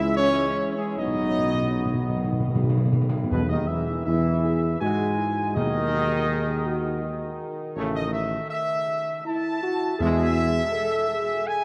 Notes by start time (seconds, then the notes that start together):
Already playing: C#2 E3 G#3 E4 E5
0.16 C#4 C#5
0.77 G#3 G#4
0.97 B1 B2 F#3 B3 D#4 D#5
1.07 B2
1.15 B2
1.23 B2
1.31 B2
1.39 B2
1.45 B2
1.54 B2
1.62 B2
1.69 B2
1.78 B2
1.86 B2
1.94 B2
2.01 B2
2.09 B2
2.17 B2
2.24 B2
2.32 B2
2.40 B2
2.48 B2
2.55 B2
2.63 B2
2.69 B2
2.77 B2
2.85 B2
2.92 B2
3.01 B2
3.09 B2
3.17 B2
3.24 B2
3.30 B1 E2 B2 G#4 B4
3.49 D#2 D#3 D#5
3.67 E2 E3 E5
4.05 E2 E3 E4 E5
4.43 G#4
4.80 G#2 G#3 F#4 G#5
5.18 E4
5.55 D#2 B2 D#3 G#4 D#5
5.92 F#4
6.29 G#4
6.66 F#4
7.02 D#3
7.76 A1 C#3 A3 C#5
7.94 D#5
8.12 E5
8.50 E5
9.25 E4 A5
9.63 F#4
9.99 E2 B2 G#3 G#4 E5
10.72 A4
11.10 G#4
11.47 G#5